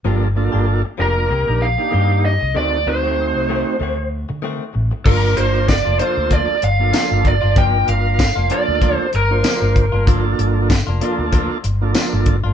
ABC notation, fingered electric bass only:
X:1
M:4/4
L:1/16
Q:"Swing 16ths" 1/4=96
K:Dphr
V:1 name="Fingered electric bass" clef=bass
G,,,3 G,,,2 z F,,,2 C,, B,,,2 z G,,3 C,, | D,,2 D,,3 C,,2 z D,,3 D,2 z A,,, z | [K:Gm] G,,,2 G,,,3 F,,, z D,,2 z G,,,2 z G,,,2 G,,,- | G,,,2 G,,,3 F,,, z D,,2 z G,,,2 z G,,,2 G,,,- |
G,,,2 G,,,3 F,,, z D,,2 z G,,,2 z G,,,2 G,,, |]